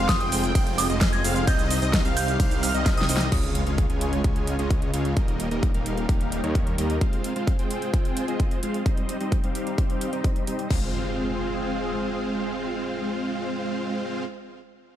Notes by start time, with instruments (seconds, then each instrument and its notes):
Already playing: detuned saw bass F1, supersaw synth G#3 C4 F4 C5 F5, analog synth pad C4 F4 G#4, analog synth lead F5
0.09 synth bell D#6, kick, snare, closed hi-hat, ride, cabasa
0.21 detuned saw bass F1, supersaw synth G#3 C4 F4 C5 G5, analog synth lead G5, synth bell D#6, closed hi-hat
0.32 open hi-hat, cabasa
0.44 closed hi-hat, cabasa
0.55 detuned saw bass F1, supersaw synth G#3 C4 F4 C5 G5, analog synth lead G5, kick, closed hi-hat, ride, cabasa
0.67 closed hi-hat
0.78 synth bell D#6, open hi-hat, cabasa
0.90 detuned saw bass F1, supersaw synth G#3 C4 F4 C5 D#5, analog synth lead D#5, closed hi-hat, cabasa
1.01 kick, snare, closed hi-hat, ride, cabasa
1.13 synth bell G#6, closed hi-hat, cabasa
1.24 detuned saw bass F1, supersaw synth G#3 C4 F4 C5 F5, analog synth lead F5, open hi-hat, cabasa
1.36 closed hi-hat, cabasa
1.47 detuned saw bass C2, supersaw synth G3 C4 D#4 C5 D#5, analog synth pad D#4 G4, analog synth lead D#5, synth bell G6, kick, closed hi-hat, ride, cabasa
1.59 closed hi-hat, cabasa
1.71 open hi-hat, cabasa
1.82 detuned saw bass C2, supersaw synth G3 C4 D#4 C5 D#5, analog synth lead D#5, closed hi-hat, cabasa
1.93 kick, snare, closed hi-hat, ride, cabasa
2.05 detuned saw bass C2, supersaw synth G3 C4 D#4 C5 F5, analog synth lead F5, closed hi-hat, cabasa
2.17 synth bell G6, open hi-hat, cabasa
2.28 closed hi-hat, cabasa
2.40 detuned saw bass C2, supersaw synth G3 C4 D#4 C5 F5, analog synth lead F5, kick, closed hi-hat, ride, cabasa
2.51 closed hi-hat, cabasa
2.63 synth bell F6, open hi-hat, cabasa
2.74 detuned saw bass C2, supersaw synth G3 C4 D#4 C5 D#5, analog synth lead D#5, closed hi-hat, cabasa
2.86 kick, snare, closed hi-hat, ride, cabasa
2.97 synth bell D#6, snare, closed hi-hat, cabasa
3.09 detuned saw bass C2, supersaw synth G3 C4 D#4 C5 D#5, analog synth lead D#5, open hi-hat, cabasa
3.17 snare, closed hi-hat
3.21 cabasa
3.32 detuned saw bass C#2, supersaw synth G#3 C#4 F4 C#5 F5, analog synth pad C#4 F4 G#4, kick, closed hi-hat, crash, impact
3.44 closed hi-hat
3.55 closed hi-hat
3.67 detuned saw bass C#2, supersaw synth G#3 C#4 F4 C#5 F5, closed hi-hat
3.78 kick, closed hi-hat
3.90 detuned saw bass C#2, supersaw synth G#3 C#4 F4 C#5 G#5, closed hi-hat
4.01 closed hi-hat
4.13 closed hi-hat
4.24 detuned saw bass C#2, supersaw synth G#3 C#4 F4 C#5 G#5, kick, closed hi-hat
4.36 closed hi-hat
4.47 closed hi-hat
4.59 detuned saw bass C#2, supersaw synth G#3 C#4 F4 C#5 D#5, closed hi-hat
4.70 kick, closed hi-hat
4.82 closed hi-hat
4.94 detuned saw bass C#2, supersaw synth G#3 C#4 F4 C#5 F5, closed hi-hat
5.05 closed hi-hat
5.17 detuned saw bass D#1, supersaw synth G3 A#3 D#4 A#4 D#5, analog synth pad A#3 D#4 G4, kick, closed hi-hat
5.28 closed hi-hat
5.40 closed hi-hat
5.51 detuned saw bass D#1, supersaw synth G3 A#3 D#4 A#4 D#5, closed hi-hat
5.63 kick, closed hi-hat
5.74 detuned saw bass D#1, supersaw synth G3 A#3 D#4 A#4 F5, closed hi-hat
5.86 closed hi-hat
5.97 closed hi-hat
6.09 detuned saw bass D#1, supersaw synth G3 A#3 D#4 A#4 F5, kick, closed hi-hat
6.21 closed hi-hat
6.32 closed hi-hat
6.44 detuned saw bass D#2, supersaw synth G3 A#3 D#4 A#4 C#5, closed hi-hat
6.55 kick, closed hi-hat
6.67 closed hi-hat
6.78 detuned saw bass D#2, supersaw synth G3 A#3 D#4 A#4 D#5, closed hi-hat
6.90 closed hi-hat
7.01 supersaw synth G#3 C4 F4 C5 F5, analog synth pad C4 F4 G#4, kick, closed hi-hat
7.13 closed hi-hat
7.24 closed hi-hat
7.36 supersaw synth G#3 C4 F4 C5 F5, closed hi-hat
7.47 kick, closed hi-hat
7.59 supersaw synth G#3 C4 F4 C5 G5, closed hi-hat
7.71 closed hi-hat
7.82 closed hi-hat
7.94 supersaw synth G#3 C4 F4 C5 G5, kick, closed hi-hat
8.05 closed hi-hat
8.17 closed hi-hat
8.28 supersaw synth G#3 C4 F4 C5 D#5, closed hi-hat
8.40 kick, closed hi-hat
8.51 closed hi-hat
8.63 supersaw synth G#3 C4 F4 C5 F5, closed hi-hat
8.74 closed hi-hat
8.86 supersaw synth G3 C4 D#4 C5 D#5, analog synth pad C4 D#4 G4, kick, closed hi-hat
8.97 closed hi-hat
9.09 closed hi-hat
9.21 supersaw synth G3 C4 D#4 C5 D#5, closed hi-hat
9.32 kick, closed hi-hat
9.44 supersaw synth G3 C4 D#4 C5 F5, closed hi-hat
9.55 closed hi-hat
9.67 closed hi-hat
9.78 supersaw synth G3 C4 D#4 C5 F5, kick, closed hi-hat
9.90 closed hi-hat
10.01 closed hi-hat
10.13 supersaw synth G3 C4 D#4 C5 D#5, closed hi-hat
10.24 kick, closed hi-hat
10.36 closed hi-hat
10.47 supersaw synth G3 C4 D#4 C5 D#5, closed hi-hat
10.59 closed hi-hat
10.70 supersaw synth G#3 C4 F4 C5 F5, analog synth pad C4 F4 G#4, kick, crash, impact